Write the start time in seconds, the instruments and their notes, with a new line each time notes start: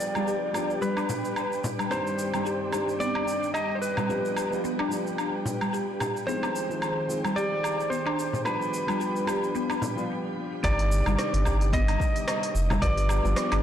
Already playing: felt piano F3 G3 B3 D4 B4, analog synth pad G3 D4 G4 B4, electric slide guitar D5, synth texture G5
0.00 shaker
0.15 felt piano F3 G3 B3 D4 F4, synth pluck G3, low woodblock, shaker
0.27 synth pluck G4, shaker
0.53 felt piano F3 G3 B3 D4, synth pluck G4, low woodblock, shaker
0.57 felt piano G4
0.70 shaker
0.81 synth pluck G3, electric slide guitar B4, shaker
0.97 synth pluck D4, low woodblock, shaker
1.09 frame drum, shaker
1.25 shaker
1.36 low woodblock, shaker
1.52 shaker
1.64 frame drum, shaker
1.79 synth pluck G3, low woodblock, shaker
1.90 felt piano G2 D#3 G3 C4 D4 G4, analog synth pad C4 D5, electric slide guitar C5, low woodblock, shaker
2.07 shaker
2.19 shaker
2.33 felt piano G2 D#3 G3 C4 D4 G4, synth pluck G3, low woodblock, shaker
2.45 synth pluck G4, shaker
2.71 felt piano G2 D#3 G3 C4 D4 G4, synth pluck G4, low woodblock, shaker
2.89 shaker
3.00 synth pluck B3, electric slide guitar D5, shaker
3.15 synth pluck D4, low woodblock
3.28 shaker
3.43 shaker
3.54 electric slide guitar D#5, low woodblock, shaker
3.75 electric slide guitar C5
3.82 electric slide guitar B4, shaker
3.97 synth pluck G3, frame drum, low woodblock, shaker
4.08 felt piano F3 G3 B3 D4 B4, analog synth pad D4 B4, synth pluck G4, shaker
4.25 shaker
4.37 synth pluck G4, low woodblock, shaker
4.50 felt piano F3 G3 B3 D4 F4, shaker
4.64 synth pluck B3, shaker
4.79 synth pluck D4, low woodblock
4.88 felt piano F3 G3 B3 D4 G4, shaker
5.07 shaker
5.18 low woodblock, shaker
5.45 frame drum, shaker
5.61 synth pluck G3, low woodblock, shaker
5.73 synth pluck G4, shaker
6.00 synth pluck G4, frame drum, low woodblock, shaker
6.17 shaker
6.27 analog synth pad D#3 G#4 C5, felt piano F3 G#3 C4 D#4 G#4, synth pluck B3, electric slide guitar C5, shaker
6.43 synth pluck D4, low woodblock, shaker
6.56 shaker
6.69 felt piano F3 G#3 C4 D#4 G#4, shaker
6.82 low woodblock, shaker
7.08 felt piano D#3 F3 G#3 C4 G#4, shaker
7.24 synth pluck G3, low woodblock, shaker
7.36 synth pluck G4, electric slide guitar D5, shaker
7.63 synth pluck G4, low woodblock, shaker
7.80 shaker
7.90 synth pluck B3, electric slide guitar C5, shaker
8.06 synth pluck D4, low woodblock
8.19 shaker
8.33 frame drum, shaker
8.44 felt piano F3 G3 B3 D4 B4, analog synth pad G3 D4 G4 B4, electric slide guitar B4, low woodblock, shaker
8.62 shaker
8.74 shaker
8.87 felt piano F3 G3 B3 D4 F4, synth pluck G3, low woodblock, shaker
9.00 synth pluck G4, shaker
9.16 shaker
9.26 felt piano F3 G3 B3 D4, synth pluck G4, low woodblock, shaker
9.30 felt piano G4
9.44 shaker
9.55 synth pluck B3, shaker
9.70 synth pluck D4, low woodblock, shaker
9.82 frame drum, shaker
9.96 felt piano F3 G3 B3 D4 F4, shaker
10.63 sub bass G1, analog synth pad C3 G3, felt piano D#3 G3 C4 D4 G4, electric slide guitar D5, kick, open hi-hat, low woodblock, shaker
10.79 open hi-hat, shaker
10.92 shaker
11.06 sub bass G1, felt piano D#3 G3 C4 D4 G4, synth pluck G3, low woodblock, shaker
11.18 synth pluck G4, cross-stick, open hi-hat, shaker
11.34 sub bass G1, open hi-hat
11.44 felt piano D3 D#3 G3 C4 G4, synth pluck G4, kick, low woodblock, shaker
11.61 open hi-hat, shaker
11.73 synth pluck B3, electric slide guitar D#5, kick, open hi-hat, shaker
11.88 synth pluck D3, open hi-hat, low woodblock
12.00 kick, shaker
12.16 open hi-hat, shaker
12.28 cross-stick, open hi-hat, low woodblock, shaker
12.43 open hi-hat
12.55 sub bass F1, shaker
12.70 synth pluck G3, frame drum, low woodblock, shaker
12.81 sub bass G1, felt piano F3 G3 B3 D4 B4, analog synth pad G4 B4, synth pluck G4, electric slide guitar D5, kick, open hi-hat, shaker
12.97 open hi-hat, shaker
13.09 synth pluck G4, low woodblock, shaker
13.23 sub bass G1, felt piano F3 G3 B3 D4 F4, shaker
13.36 synth pluck B3, cross-stick, open hi-hat, shaker
13.52 sub bass G1, synth pluck D4, cross-stick, open hi-hat, low woodblock